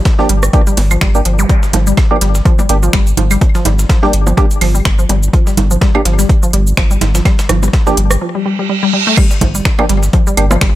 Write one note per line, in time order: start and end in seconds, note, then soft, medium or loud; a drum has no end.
0.05 kick loud
0.05 snare loud
0.05 closed hi-hat medium
0.19 0.23 F3 medium
0.19 0.28 A#3 medium
0.19 0.28 D4 medium
0.19 0.28 G4 loud
0.19 snare soft
0.29 0.49 G1 medium
0.29 0.32 G3 medium
0.29 closed hi-hat medium
0.43 cross-stick medium
0.43 shaker soft
0.53 0.59 F3 medium
0.53 0.61 A#3 medium
0.53 0.61 D4 medium
0.53 0.61 G4 medium
0.53 kick loud
0.53 closed hi-hat medium
0.67 0.69 G3 medium
0.67 closed hi-hat soft
0.67 shaker soft
0.77 0.97 G1 loud
0.77 snare soft
0.77 closed hi-hat loud
0.77 open hi-hat medium
0.77 low bongo soft
0.91 0.95 F3 medium
0.91 claves medium
0.91 shaker medium
1.01 1.21 G1 medium
1.01 1.04 G3 medium
1.01 finger snap loud
1.01 kick loud
1.01 snare loud
1.01 closed hi-hat medium
1.15 1.21 A#3 medium
1.15 1.21 D4 medium
1.15 1.21 G4 loud
1.15 shaker soft
1.25 1.45 G1 medium
1.25 1.31 F3 medium
1.25 closed hi-hat medium
1.39 1.41 G3 medium
1.39 zap medium
1.39 shaker medium
1.49 1.52 G3 medium
1.49 kick loud
1.49 closed hi-hat medium
1.63 snare soft
1.63 shaker soft
1.73 1.93 G1 loud
1.73 1.79 F3 medium
1.73 snare soft
1.73 closed hi-hat medium
1.73 low bongo soft
1.73 low conga medium
1.87 1.89 G3 medium
1.87 shaker soft
1.97 kick loud
1.97 snare loud
1.97 closed hi-hat medium
1.97 claves medium
2.11 2.15 F3 medium
2.11 2.17 A#3 medium
2.11 2.17 D4 medium
2.11 2.17 G4 loud
2.21 2.41 G1 medium
2.21 2.24 G3 medium
2.21 snare soft
2.21 closed hi-hat medium
2.35 snare soft
2.35 shaker soft
2.45 2.51 F3 medium
2.45 kick loud
2.45 closed hi-hat medium
2.59 2.61 G3 medium
2.59 low bongo soft
2.59 shaker soft
2.69 2.89 G1 loud
2.69 2.77 A#3 medium
2.69 2.77 D4 medium
2.69 2.77 G4 medium
2.69 closed hi-hat medium
2.83 2.87 F3 medium
2.83 shaker soft
2.93 3.13 G1 medium
2.93 2.96 G3 medium
2.93 finger snap loud
2.93 kick loud
2.93 snare loud
2.93 closed hi-hat medium
3.07 closed hi-hat soft
3.07 shaker soft
3.17 3.37 G1 medium
3.17 3.23 F3 medium
3.17 closed hi-hat medium
3.17 low conga medium
3.31 3.33 G3 medium
3.31 closed hi-hat soft
3.31 claves medium
3.31 shaker soft
3.41 kick loud
3.41 closed hi-hat medium
3.41 low bongo soft
3.55 3.59 F3 medium
3.55 snare soft
3.55 shaker soft
3.65 3.85 G1 loud
3.65 3.68 G3 medium
3.65 snare soft
3.65 closed hi-hat medium
3.65 low conga medium
3.79 snare soft
3.79 shaker soft
3.89 3.95 F3 medium
3.89 kick loud
3.89 snare loud
3.89 closed hi-hat medium
4.03 4.05 G3 medium
4.03 4.12 A#3 loud
4.03 4.12 D4 medium
4.03 4.12 G4 loud
4.03 snare soft
4.13 4.33 G1 medium
4.13 closed hi-hat medium
4.27 4.31 F3 medium
4.27 low bongo soft
4.27 shaker soft
4.37 4.40 G3 medium
4.37 4.45 A#3 medium
4.37 4.45 D4 medium
4.37 4.45 G4 loud
4.37 kick loud
4.37 closed hi-hat medium
4.51 closed hi-hat soft
4.51 shaker soft
4.61 4.81 G1 loud
4.61 4.67 F3 medium
4.61 snare soft
4.61 closed hi-hat medium
4.61 open hi-hat medium
4.61 claves medium
4.75 4.77 G3 medium
4.75 shaker medium
4.85 5.05 G1 medium
4.85 finger snap loud
4.85 kick loud
4.85 snare loud
4.85 closed hi-hat medium
4.99 5.03 F3 medium
4.99 shaker soft
5.09 5.29 G1 medium
5.09 5.12 G3 medium
5.09 closed hi-hat medium
5.09 low bongo soft
5.23 shaker medium
5.33 5.39 F3 medium
5.33 kick loud
5.33 closed hi-hat medium
5.47 5.49 G3 medium
5.47 snare soft
5.47 shaker soft
5.57 5.77 G1 loud
5.57 snare soft
5.57 closed hi-hat medium
5.57 low conga medium
5.71 5.75 F3 medium
5.71 shaker medium
5.81 5.84 G3 medium
5.81 kick loud
5.81 snare loud
5.81 closed hi-hat medium
5.95 6.01 A#3 loud
5.95 6.01 D4 medium
5.95 6.01 G4 loud
5.95 low bongo soft
5.95 claves medium
6.05 6.25 G1 medium
6.05 6.11 F3 medium
6.05 snare soft
6.05 closed hi-hat medium
6.19 6.21 G3 medium
6.19 snare soft
6.19 shaker medium
6.29 kick loud
6.29 closed hi-hat medium
6.43 6.47 F3 medium
6.43 shaker soft
6.53 6.73 G1 loud
6.53 6.56 G3 medium
6.53 closed hi-hat medium
6.67 shaker medium
6.77 6.97 G1 medium
6.77 6.83 F3 medium
6.77 finger snap loud
6.77 kick loud
6.77 snare loud
6.77 closed hi-hat medium
6.77 low bongo soft
6.91 6.93 G3 medium
6.91 closed hi-hat soft
6.91 shaker soft
7.01 7.21 G1 medium
7.01 snare loud
7.01 closed hi-hat medium
7.01 low conga medium
7.15 7.19 F3 medium
7.15 snare loud
7.15 closed hi-hat medium
7.15 shaker medium
7.25 7.28 G3 medium
7.25 kick loud
7.25 snare loud
7.25 closed hi-hat medium
7.25 claves medium
7.39 snare loud
7.39 closed hi-hat medium
7.39 shaker soft
7.49 7.69 G1 loud
7.49 7.55 F3 medium
7.49 cross-stick medium
7.49 snare soft
7.49 closed hi-hat medium
7.49 low conga medium
7.63 7.65 G3 medium
7.63 snare soft
7.63 low bongo soft
7.63 shaker medium
7.73 kick loud
7.73 snare loud
7.73 closed hi-hat medium
7.87 7.91 F3 medium
7.87 7.96 A#3 medium
7.87 7.96 D4 medium
7.87 7.96 G4 loud
7.87 snare soft
7.87 shaker soft
7.97 8.17 G1 medium
7.97 8.00 G3 medium
7.97 closed hi-hat medium
8.11 cross-stick medium
8.11 shaker medium
8.21 8.27 F3 medium
8.21 reverse cymbal medium
8.35 8.37 G3 medium
8.46 8.49 G3 medium
8.59 8.62 G3 medium
8.69 8.73 G3 medium
8.83 8.85 G3 loud
8.93 8.96 G3 medium
9.07 9.10 A3 loud
9.17 9.20 G3 medium
9.17 kick loud
9.17 closed hi-hat medium
9.17 crash loud
9.17 claves medium
9.31 snare soft
9.31 shaker soft
9.41 9.61 G1 medium
9.41 9.47 F3 medium
9.41 kick medium
9.41 snare soft
9.41 closed hi-hat medium
9.41 low conga medium
9.55 9.57 G3 medium
9.55 shaker medium
9.65 finger snap loud
9.65 kick loud
9.65 snare loud
9.65 closed hi-hat medium
9.79 9.83 F3 medium
9.79 9.85 A#3 loud
9.79 9.85 D4 medium
9.79 9.85 G4 loud
9.79 low bongo medium
9.79 claves medium
9.89 10.09 G1 medium
9.89 9.92 G3 medium
9.89 snare medium
9.89 closed hi-hat medium
10.03 snare soft
10.03 shaker medium
10.13 10.19 F3 medium
10.13 kick loud
10.13 closed hi-hat medium
10.27 10.29 G3 medium
10.27 shaker soft
10.37 10.57 G1 loud
10.37 10.45 A#3 medium
10.37 10.45 D4 medium
10.37 10.45 G4 medium
10.37 closed hi-hat medium
10.37 claves medium
10.51 10.55 F3 medium
10.51 low bongo medium
10.51 shaker medium
10.61 10.75 G1 medium
10.61 10.64 G3 medium
10.61 finger snap loud
10.61 kick loud
10.61 snare loud
10.61 closed hi-hat medium